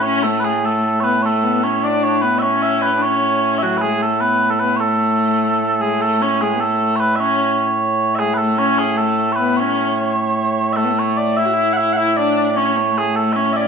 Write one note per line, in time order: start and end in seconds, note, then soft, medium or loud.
0.00 13.68 A2 medium
0.00 13.68 A3 medium
0.00 0.23 C#5 medium
0.05 0.26 C#4 medium
0.23 0.62 A3 medium
0.23 0.40 A4 medium
0.40 0.44 B4 medium
0.44 0.65 G#4 medium
0.63 1.00 A3 medium
0.63 1.00 A4 medium
1.00 1.21 B3 medium
1.00 1.22 B4 medium
1.00 1.04 C#5 medium
1.22 1.45 A3 medium
1.22 1.64 A4 medium
1.22 1.26 C#5 medium
1.43 1.65 B3 medium
1.63 1.84 C#4 medium
1.63 1.85 C#5 medium
1.83 2.24 D4 medium
1.83 2.03 D5 medium
2.03 2.21 C#5 medium
2.21 2.43 B3 medium
2.21 2.39 B4 medium
2.39 2.95 C#4 medium
2.39 2.62 C#5 medium
2.39 2.42 E5 medium
2.62 2.82 E5 medium
2.82 3.02 B4 medium
2.96 3.06 D4 soft
3.02 3.64 C#4 medium
3.02 3.58 C#5 medium
3.58 3.63 E5 medium
3.63 3.83 F#3 medium
3.63 3.77 F#4 medium
3.77 4.02 G#4 medium
3.77 3.81 B4 medium
3.83 4.03 G#3 medium
4.02 4.22 A3 medium
4.02 4.21 A4 medium
4.21 4.51 B3 medium
4.21 4.50 B4 medium
4.50 4.56 A3 medium
4.50 4.59 A4 medium
4.59 4.80 B3 medium
4.59 4.76 B4 medium
4.76 4.80 C#5 medium
4.80 5.77 A3 medium
4.80 5.81 A4 medium
5.81 6.04 G#3 medium
5.81 6.01 G#4 medium
6.01 6.22 A3 medium
6.01 6.22 A4 medium
6.21 6.44 C#4 medium
6.21 6.41 C#5 medium
6.41 6.57 G#3 medium
6.41 6.60 G#4 medium
6.55 6.61 B3 medium
6.60 7.19 A3 medium
6.60 6.96 A4 medium
6.96 7.16 B4 medium
6.96 7.00 C#5 medium
7.16 7.20 E5 medium
7.20 7.62 C#4 medium
7.20 8.15 C#5 medium
8.15 8.34 G#4 medium
8.15 8.19 E5 medium
8.19 8.37 G#3 medium
8.34 8.59 A4 medium
8.34 8.38 B4 medium
8.38 8.57 A3 medium
8.59 8.96 C#4 medium
8.59 8.78 C#5 medium
8.78 8.97 G#4 medium
8.97 9.35 A3 medium
8.97 9.32 A4 medium
9.32 9.57 B4 medium
9.32 9.36 C#5 medium
9.39 9.62 B3 medium
9.57 10.04 C#4 medium
9.57 10.73 C#5 medium
10.73 10.85 A3 medium
10.73 10.99 A4 medium
10.73 10.77 E5 medium
10.84 10.93 B3 medium
10.91 11.40 A3 medium
10.99 11.17 C#5 medium
11.17 11.37 D5 medium
11.37 11.47 E4 medium
11.37 11.73 E5 loud
11.45 11.55 F#4 medium
11.53 11.78 E4 medium
11.73 11.93 E5 medium
11.73 11.77 F#5 medium
11.79 11.96 E4 medium
11.93 11.97 F#5 medium
11.97 12.16 E4 medium
11.97 12.17 E5 medium
12.17 12.55 D4 medium
12.17 12.57 D5 medium
12.56 12.78 C#4 medium
12.56 12.98 C#5 loud
12.76 13.15 A3 medium
12.98 13.16 G#4 medium
13.16 13.38 A3 medium
13.16 13.33 A4 medium
13.33 13.68 C#4 medium
13.33 13.53 C#5 medium
13.33 13.36 E5 medium
13.53 13.68 D5 medium
13.53 13.56 E5 medium